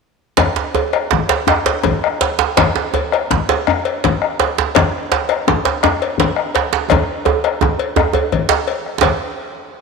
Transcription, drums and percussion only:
0.37 bombo rim, bombo low, cowbell, djembe slap, djembe tone, djembe bass
0.56 djembe slap
0.75 cowbell, djembe tone
0.93 bombo rim, cowbell
1.11 bombo low, djembe slap
1.29 cowbell, djembe slap
1.47 bombo rim, djembe slap, djembe bass
1.66 bombo rim, cowbell, djembe slap
1.83 bombo low, cowbell, djembe slap, djembe tone
2.04 bombo rim
2.21 cowbell, djembe slap
2.39 djembe slap
2.57 bombo rim, bombo low, cowbell, djembe slap, djembe tone, djembe bass
2.76 djembe slap
2.94 cowbell, djembe tone
3.12 bombo rim, cowbell
3.31 bombo low, djembe slap, djembe tone
3.49 cowbell, djembe slap
3.67 bombo rim, djembe bass
3.85 bombo rim, cowbell
4.04 bombo low, cowbell, djembe slap, djembe tone
4.22 bombo rim
4.40 cowbell, djembe slap
4.58 djembe slap
4.75 bombo rim, bombo low, cowbell, djembe slap, djembe tone, djembe bass
5.12 cowbell, djembe slap
5.29 bombo rim, cowbell
5.47 bombo low, djembe slap, djembe tone
5.65 cowbell, djembe slap
5.83 bombo rim, djembe slap, djembe bass
6.01 bombo rim, cowbell
6.18 bombo low, cowbell, djembe slap, djembe tone
6.36 bombo rim
6.55 cowbell, djembe slap
6.73 djembe slap
6.90 bombo rim, bombo low, cowbell, djembe slap, djembe tone, djembe bass
7.25 bombo rim, cowbell, djembe tone
7.44 bombo rim, cowbell
7.61 bombo low, djembe slap, djembe tone
7.79 cowbell
7.96 bombo rim, djembe tone, djembe bass
8.13 cowbell, djembe slap, djembe tone
8.32 bombo rim, bombo low, cowbell, djembe tone
8.49 bombo rim, djembe slap
8.68 bombo rim, cowbell, djembe slap
8.86 bombo rim
9.01 bombo low, cowbell, djembe slap, djembe bass

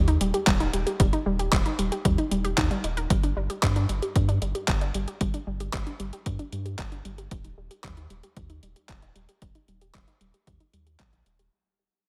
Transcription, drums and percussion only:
0.08 closed hi-hat
0.21 closed hi-hat
0.34 closed hi-hat
0.47 kick, clap, closed hi-hat
0.60 closed hi-hat
0.73 closed hi-hat
0.87 closed hi-hat
1.00 kick, closed hi-hat
1.13 closed hi-hat
1.39 closed hi-hat
1.52 kick, clap, closed hi-hat
1.66 closed hi-hat
1.79 closed hi-hat
1.92 closed hi-hat
2.05 kick, closed hi-hat
2.18 closed hi-hat
2.31 closed hi-hat
2.45 closed hi-hat
2.58 kick, clap, closed hi-hat
2.71 closed hi-hat
2.84 closed hi-hat
2.97 closed hi-hat
3.10 kick, closed hi-hat
3.23 closed hi-hat
3.50 closed hi-hat
3.63 kick, clap, closed hi-hat
3.76 closed hi-hat
3.89 closed hi-hat
4.02 closed hi-hat
4.16 kick, closed hi-hat
4.29 closed hi-hat
4.42 closed hi-hat
4.55 closed hi-hat
4.68 kick, clap, closed hi-hat
4.81 closed hi-hat
4.94 closed hi-hat
5.08 closed hi-hat
5.21 kick, closed hi-hat
5.34 closed hi-hat
5.60 closed hi-hat
5.73 kick, clap, closed hi-hat
5.87 closed hi-hat
6.00 closed hi-hat
6.13 closed hi-hat
6.26 kick, closed hi-hat
6.39 closed hi-hat
6.52 closed hi-hat
6.66 closed hi-hat
6.79 kick, clap, closed hi-hat
6.92 closed hi-hat
7.05 closed hi-hat
7.18 closed hi-hat
7.31 kick, closed hi-hat
7.45 closed hi-hat
7.71 closed hi-hat
7.84 kick, clap, closed hi-hat
7.97 closed hi-hat
8.10 closed hi-hat
8.23 closed hi-hat
8.37 kick, closed hi-hat
8.50 closed hi-hat
8.63 closed hi-hat
8.76 closed hi-hat
8.89 kick, clap, closed hi-hat
9.02 closed hi-hat
9.16 closed hi-hat
9.29 closed hi-hat
9.42 kick, closed hi-hat
9.55 closed hi-hat
9.68 closed hi-hat
9.81 closed hi-hat
9.95 kick, clap, closed hi-hat
10.08 closed hi-hat
10.21 closed hi-hat
10.34 closed hi-hat
10.47 kick, closed hi-hat
10.60 closed hi-hat
10.74 closed hi-hat
10.87 closed hi-hat
11.00 kick, clap, closed hi-hat
11.13 closed hi-hat
11.26 closed hi-hat
11.39 closed hi-hat

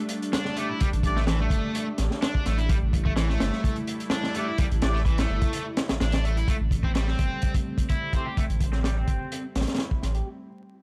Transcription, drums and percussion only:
0.09 closed hi-hat
0.22 closed hi-hat
0.33 snare, closed hi-hat
0.45 snare
0.57 closed hi-hat
0.80 kick, closed hi-hat
0.93 closed hi-hat
1.03 kick, closed hi-hat
1.16 snare
1.27 snare, closed hi-hat
1.50 kick, closed hi-hat
1.75 closed hi-hat
1.98 snare, closed hi-hat
2.11 snare
2.22 snare, closed hi-hat
2.35 kick
2.46 snare, closed hi-hat
2.58 closed hi-hat
2.69 kick, closed hi-hat
2.93 kick, closed hi-hat
3.06 kick
3.16 snare, closed hi-hat
3.30 snare
3.40 snare, closed hi-hat
3.53 snare
3.64 kick, closed hi-hat
3.76 closed hi-hat
3.87 closed hi-hat
4.00 closed hi-hat
4.10 snare, closed hi-hat
4.24 snare
4.35 closed hi-hat
4.58 kick, closed hi-hat
4.71 closed hi-hat
4.82 snare, closed hi-hat
4.96 snare
5.05 kick, closed hi-hat
5.18 snare, closed hi-hat
5.42 kick, closed hi-hat
5.53 closed hi-hat
5.77 snare, closed hi-hat
5.89 snare, closed hi-hat
6.00 snare, closed hi-hat
6.12 snare, closed hi-hat
6.25 closed hi-hat
6.37 closed hi-hat
6.48 kick, closed hi-hat
6.71 kick, closed hi-hat
6.83 kick
6.95 snare, closed hi-hat
7.08 snare
7.19 kick, closed hi-hat
7.42 kick, closed hi-hat
7.54 kick, closed hi-hat
7.78 kick, closed hi-hat
7.89 kick, closed hi-hat
8.13 kick, closed hi-hat
8.37 kick, closed hi-hat
8.50 closed hi-hat
8.61 kick, closed hi-hat
8.72 snare
8.84 snare, closed hi-hat
9.08 kick, closed hi-hat
9.32 closed hi-hat
9.55 snare, closed hi-hat
9.61 snare, closed hi-hat
9.67 snare, closed hi-hat
9.74 snare, closed hi-hat
9.78 snare, closed hi-hat
9.91 kick
10.03 snare, closed hi-hat
10.15 closed hi-hat

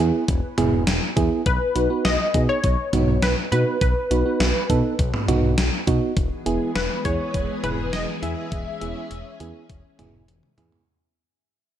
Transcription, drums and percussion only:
0.28 kick, closed hi-hat
0.58 closed hi-hat, mid tom
0.87 snare, closed hi-hat
1.17 kick, closed hi-hat
1.46 kick, closed hi-hat
1.76 closed hi-hat
2.05 snare, closed hi-hat
2.34 kick, closed hi-hat
2.64 kick, closed hi-hat
2.93 closed hi-hat, mid tom
3.22 snare, closed hi-hat
3.52 closed hi-hat
3.81 kick, closed hi-hat
4.11 closed hi-hat
4.40 snare, closed hi-hat
4.70 kick, closed hi-hat
4.99 kick, closed hi-hat
5.14 mid tom
5.28 closed hi-hat, mid tom
5.58 snare, closed hi-hat
5.87 kick, closed hi-hat
6.17 kick, closed hi-hat
6.46 closed hi-hat
6.75 snare, closed hi-hat
7.05 kick, closed hi-hat
7.34 kick, closed hi-hat
7.64 closed hi-hat, mid tom
7.93 snare, closed hi-hat
8.23 closed hi-hat
8.52 kick, closed hi-hat
8.81 closed hi-hat
9.11 closed hi-hat
9.40 closed hi-hat
9.70 kick, closed hi-hat
9.99 closed hi-hat, mid tom
10.28 closed hi-hat, high tom
10.43 mid tom
10.58 closed hi-hat, mid tom
10.72 floor tom

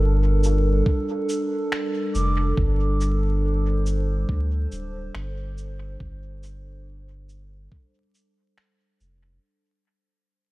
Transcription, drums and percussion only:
0.44 shaker
0.86 kick
1.29 shaker
1.72 finger snap
2.15 shaker
2.58 kick
3.01 shaker
3.86 shaker
4.29 kick
4.72 shaker
5.15 finger snap
5.58 shaker
6.00 kick
6.43 shaker
7.29 shaker
7.72 kick
8.15 shaker
8.58 finger snap
9.00 shaker

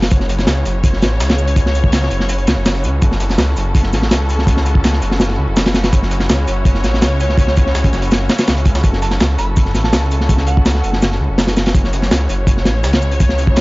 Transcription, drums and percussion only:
0.02 snare, closed hi-hat
0.10 kick, closed hi-hat, shaker
0.20 snare
0.29 snare, closed hi-hat, shaker
0.39 snare
0.47 snare, closed hi-hat, shaker
0.65 snare, closed hi-hat, shaker
0.84 kick, closed hi-hat, shaker
0.93 snare
1.02 snare, closed hi-hat, shaker
1.20 snare, closed hi-hat, shaker
1.29 snare, closed hi-hat
1.38 shaker
1.47 closed hi-hat
1.56 kick, closed hi-hat, shaker
1.66 snare
1.75 closed hi-hat, shaker
1.84 kick
1.92 snare, closed hi-hat, shaker
2.03 snare
2.10 closed hi-hat, shaker
2.20 snare
2.29 closed hi-hat, shaker
2.38 closed hi-hat
2.47 snare, closed hi-hat, shaker
2.66 snare, closed hi-hat, shaker
2.75 snare
2.84 closed hi-hat, shaker
3.02 kick, closed hi-hat, shaker
3.12 snare
3.20 snare, closed hi-hat, shaker
3.30 snare
3.38 snare, closed hi-hat, shaker
3.57 snare, closed hi-hat, shaker
3.75 kick, closed hi-hat, shaker
3.83 snare
3.93 snare, closed hi-hat, shaker
4.02 snare
4.11 snare, closed hi-hat, shaker
4.29 closed hi-hat, shaker
4.38 snare
4.47 kick, closed hi-hat, shaker
4.57 snare
4.66 closed hi-hat, shaker
4.75 kick
4.84 snare, closed hi-hat, shaker
4.93 snare
5.02 closed hi-hat, shaker
5.11 snare
5.20 snare, closed hi-hat, shaker
5.30 snare
5.57 snare, closed hi-hat, shaker
5.66 snare, closed hi-hat
5.74 snare, closed hi-hat, shaker
5.84 snare, closed hi-hat
5.93 kick, closed hi-hat, shaker
6.03 snare
6.11 snare, closed hi-hat, shaker
6.20 snare
6.29 snare, closed hi-hat, shaker
6.48 snare, closed hi-hat, shaker
6.65 kick, closed hi-hat, shaker
6.74 snare
6.84 snare, closed hi-hat, shaker
6.94 snare
7.02 snare, closed hi-hat, shaker
7.20 closed hi-hat, shaker
7.29 snare
7.38 kick, closed hi-hat, shaker
7.47 snare
7.57 kick, closed hi-hat, shaker
7.66 snare
7.75 snare, closed hi-hat, shaker
7.84 kick, closed hi-hat
7.93 snare, shaker
8.02 snare, closed hi-hat
8.11 snare, closed hi-hat, shaker
8.29 snare, closed hi-hat, shaker
8.39 snare, closed hi-hat, shaker
8.48 snare, closed hi-hat, shaker
8.56 closed hi-hat
8.65 kick, closed hi-hat, shaker
8.75 snare, shaker
8.84 kick, closed hi-hat, shaker
8.93 snare
9.02 snare, closed hi-hat, shaker
9.11 snare
9.20 snare, closed hi-hat, shaker
9.38 snare, closed hi-hat, shaker
9.57 kick, closed hi-hat, shaker
9.65 snare
9.75 snare, closed hi-hat, shaker
9.84 snare
9.93 snare, closed hi-hat, shaker
10.11 closed hi-hat, shaker
10.20 snare
10.29 kick, closed hi-hat, shaker
10.37 snare
10.47 closed hi-hat, shaker
10.57 kick
10.66 snare, closed hi-hat, shaker
10.75 snare
10.84 closed hi-hat, shaker
10.93 snare
11.02 snare, closed hi-hat, shaker
11.12 snare
11.38 snare, closed hi-hat, shaker
11.47 snare, closed hi-hat
11.56 snare, closed hi-hat, shaker
11.66 snare, closed hi-hat
11.74 kick, closed hi-hat, shaker
11.84 snare
11.93 snare, closed hi-hat, shaker
12.02 snare
12.11 snare, closed hi-hat, shaker
12.29 snare, closed hi-hat, shaker
12.47 kick, closed hi-hat, shaker
12.57 snare
12.65 snare, closed hi-hat, shaker
12.84 snare, closed hi-hat, shaker
12.93 snare, closed hi-hat
13.02 shaker
13.11 closed hi-hat
13.20 kick, closed hi-hat, shaker
13.29 snare
13.38 closed hi-hat, shaker
13.47 kick
13.56 snare, closed hi-hat, shaker

